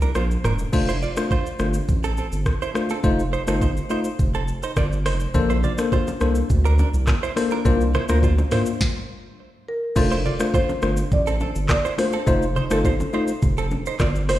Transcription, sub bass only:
0, 0, Header, 1, 2, 480
1, 0, Start_track
1, 0, Key_signature, -1, "major"
1, 0, Tempo, 576923
1, 608, Time_signature, 4, 2, 24, 8
1, 11973, End_track
2, 0, Start_track
2, 0, Title_t, "Sub bass"
2, 0, Program_c, 0, 38
2, 13, Note_on_c, 0, 36, 92
2, 99, Note_off_c, 0, 36, 0
2, 128, Note_on_c, 0, 34, 102
2, 307, Note_off_c, 0, 34, 0
2, 368, Note_on_c, 0, 28, 88
2, 547, Note_off_c, 0, 28, 0
2, 609, Note_on_c, 0, 29, 114
2, 881, Note_off_c, 0, 29, 0
2, 1328, Note_on_c, 0, 31, 93
2, 1507, Note_off_c, 0, 31, 0
2, 1570, Note_on_c, 0, 33, 99
2, 1841, Note_off_c, 0, 33, 0
2, 1932, Note_on_c, 0, 31, 93
2, 2111, Note_off_c, 0, 31, 0
2, 2529, Note_on_c, 0, 29, 117
2, 2800, Note_off_c, 0, 29, 0
2, 2892, Note_on_c, 0, 31, 86
2, 3157, Note_off_c, 0, 31, 0
2, 3489, Note_on_c, 0, 29, 107
2, 3760, Note_off_c, 0, 29, 0
2, 3965, Note_on_c, 0, 31, 102
2, 4207, Note_on_c, 0, 29, 89
2, 4219, Note_off_c, 0, 31, 0
2, 4386, Note_off_c, 0, 29, 0
2, 4447, Note_on_c, 0, 34, 114
2, 4719, Note_off_c, 0, 34, 0
2, 5167, Note_on_c, 0, 36, 87
2, 5346, Note_off_c, 0, 36, 0
2, 5408, Note_on_c, 0, 38, 100
2, 5680, Note_off_c, 0, 38, 0
2, 5771, Note_on_c, 0, 36, 93
2, 5950, Note_off_c, 0, 36, 0
2, 6368, Note_on_c, 0, 36, 122
2, 6640, Note_off_c, 0, 36, 0
2, 6733, Note_on_c, 0, 38, 89
2, 6997, Note_off_c, 0, 38, 0
2, 8288, Note_on_c, 0, 29, 111
2, 8560, Note_off_c, 0, 29, 0
2, 9008, Note_on_c, 0, 31, 93
2, 9187, Note_off_c, 0, 31, 0
2, 9250, Note_on_c, 0, 33, 103
2, 9521, Note_off_c, 0, 33, 0
2, 9613, Note_on_c, 0, 31, 87
2, 9792, Note_off_c, 0, 31, 0
2, 10209, Note_on_c, 0, 29, 115
2, 10480, Note_off_c, 0, 29, 0
2, 10573, Note_on_c, 0, 31, 87
2, 10837, Note_off_c, 0, 31, 0
2, 11170, Note_on_c, 0, 29, 111
2, 11441, Note_off_c, 0, 29, 0
2, 11646, Note_on_c, 0, 31, 100
2, 11889, Note_on_c, 0, 29, 91
2, 11901, Note_off_c, 0, 31, 0
2, 11973, Note_off_c, 0, 29, 0
2, 11973, End_track
0, 0, End_of_file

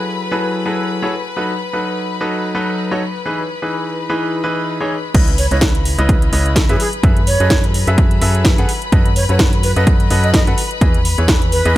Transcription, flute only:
0, 0, Header, 1, 2, 480
1, 0, Start_track
1, 0, Key_signature, 4, "minor"
1, 0, Tempo, 472441
1, 1387, Time_signature, 4, 2, 24, 8
1, 11964, End_track
2, 0, Start_track
2, 0, Title_t, "Flute"
2, 0, Program_c, 0, 73
2, 5468, Note_on_c, 0, 73, 90
2, 5553, Note_off_c, 0, 73, 0
2, 5602, Note_on_c, 0, 73, 75
2, 5669, Note_off_c, 0, 73, 0
2, 6800, Note_on_c, 0, 68, 86
2, 6869, Note_off_c, 0, 68, 0
2, 6907, Note_on_c, 0, 68, 79
2, 6993, Note_off_c, 0, 68, 0
2, 7387, Note_on_c, 0, 73, 99
2, 7760, Note_off_c, 0, 73, 0
2, 9308, Note_on_c, 0, 73, 90
2, 9393, Note_off_c, 0, 73, 0
2, 9441, Note_on_c, 0, 73, 70
2, 9509, Note_off_c, 0, 73, 0
2, 9788, Note_on_c, 0, 71, 92
2, 9873, Note_off_c, 0, 71, 0
2, 9922, Note_on_c, 0, 71, 79
2, 9990, Note_off_c, 0, 71, 0
2, 10401, Note_on_c, 0, 75, 93
2, 10469, Note_off_c, 0, 75, 0
2, 10509, Note_on_c, 0, 75, 80
2, 10594, Note_off_c, 0, 75, 0
2, 11707, Note_on_c, 0, 71, 91
2, 11964, Note_off_c, 0, 71, 0
2, 11964, End_track
0, 0, End_of_file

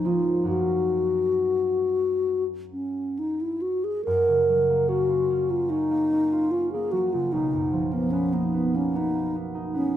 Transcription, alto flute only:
0, 0, Header, 1, 2, 480
1, 0, Start_track
1, 0, Key_signature, 6, "major"
1, 0, Tempo, 890208
1, 264, Time_signature, 4, 2, 24, 8
1, 2185, Tempo, 820793
1, 3625, Tempo, 805369
1, 5684, End_track
2, 0, Start_track
2, 0, Title_t, "Alto flute"
2, 0, Program_c, 0, 73
2, 33, Note_on_c, 0, 65, 42
2, 258, Note_off_c, 0, 65, 0
2, 261, Note_on_c, 0, 66, 41
2, 1315, Note_off_c, 0, 66, 0
2, 1470, Note_on_c, 0, 61, 39
2, 1719, Note_on_c, 0, 63, 43
2, 1727, Note_off_c, 0, 61, 0
2, 1839, Note_on_c, 0, 64, 39
2, 1847, Note_off_c, 0, 63, 0
2, 1950, Note_on_c, 0, 66, 40
2, 1958, Note_off_c, 0, 64, 0
2, 2071, Note_on_c, 0, 68, 39
2, 2079, Note_off_c, 0, 66, 0
2, 2179, Note_off_c, 0, 68, 0
2, 2182, Note_on_c, 0, 70, 55
2, 2674, Note_on_c, 0, 66, 53
2, 2682, Note_off_c, 0, 70, 0
2, 3032, Note_on_c, 0, 65, 51
2, 3041, Note_off_c, 0, 66, 0
2, 3146, Note_on_c, 0, 63, 63
2, 3155, Note_off_c, 0, 65, 0
2, 3623, Note_on_c, 0, 65, 51
2, 3632, Note_off_c, 0, 63, 0
2, 3744, Note_off_c, 0, 65, 0
2, 3748, Note_on_c, 0, 68, 51
2, 3864, Note_on_c, 0, 66, 55
2, 3873, Note_off_c, 0, 68, 0
2, 3990, Note_on_c, 0, 65, 53
2, 3999, Note_off_c, 0, 66, 0
2, 4108, Note_on_c, 0, 63, 57
2, 4117, Note_off_c, 0, 65, 0
2, 4469, Note_on_c, 0, 59, 48
2, 4478, Note_off_c, 0, 63, 0
2, 4575, Note_on_c, 0, 61, 53
2, 4584, Note_off_c, 0, 59, 0
2, 4710, Note_on_c, 0, 58, 46
2, 4719, Note_off_c, 0, 61, 0
2, 4832, Note_on_c, 0, 59, 50
2, 4841, Note_off_c, 0, 58, 0
2, 4963, Note_on_c, 0, 61, 48
2, 4972, Note_off_c, 0, 59, 0
2, 5085, Note_on_c, 0, 63, 50
2, 5094, Note_off_c, 0, 61, 0
2, 5316, Note_off_c, 0, 63, 0
2, 5553, Note_on_c, 0, 61, 53
2, 5684, Note_off_c, 0, 61, 0
2, 5684, End_track
0, 0, End_of_file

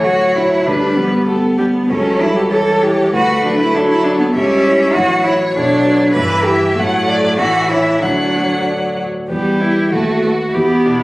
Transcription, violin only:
0, 0, Header, 1, 2, 480
1, 0, Start_track
1, 0, Key_signature, 2, "major"
1, 0, Tempo, 617284
1, 517, Time_signature, 2, 2, 24, 8
1, 2435, Tempo, 606061
1, 5315, Tempo, 628272
1, 8572, End_track
2, 0, Start_track
2, 0, Title_t, "Violin"
2, 0, Program_c, 0, 40
2, 0, Note_on_c, 0, 73, 51
2, 503, Note_off_c, 0, 73, 0
2, 520, Note_on_c, 0, 71, 51
2, 978, Note_off_c, 0, 71, 0
2, 983, Note_on_c, 0, 69, 42
2, 1223, Note_off_c, 0, 69, 0
2, 1230, Note_on_c, 0, 67, 42
2, 1292, Note_off_c, 0, 67, 0
2, 1471, Note_on_c, 0, 69, 50
2, 1940, Note_on_c, 0, 73, 53
2, 1951, Note_off_c, 0, 69, 0
2, 2427, Note_off_c, 0, 73, 0
2, 2442, Note_on_c, 0, 71, 56
2, 2919, Note_on_c, 0, 69, 53
2, 2931, Note_off_c, 0, 71, 0
2, 3393, Note_off_c, 0, 69, 0
2, 3401, Note_on_c, 0, 76, 67
2, 3875, Note_on_c, 0, 73, 71
2, 3887, Note_off_c, 0, 76, 0
2, 4833, Note_off_c, 0, 73, 0
2, 4838, Note_on_c, 0, 76, 69
2, 5330, Note_on_c, 0, 78, 70
2, 5341, Note_off_c, 0, 76, 0
2, 5555, Note_on_c, 0, 74, 65
2, 5567, Note_off_c, 0, 78, 0
2, 5784, Note_off_c, 0, 74, 0
2, 5789, Note_on_c, 0, 76, 60
2, 6278, Note_on_c, 0, 78, 54
2, 6290, Note_off_c, 0, 76, 0
2, 7009, Note_off_c, 0, 78, 0
2, 7252, Note_on_c, 0, 67, 46
2, 7726, Note_on_c, 0, 66, 44
2, 7737, Note_off_c, 0, 67, 0
2, 8194, Note_off_c, 0, 66, 0
2, 8199, Note_on_c, 0, 64, 47
2, 8572, Note_off_c, 0, 64, 0
2, 8572, End_track
0, 0, End_of_file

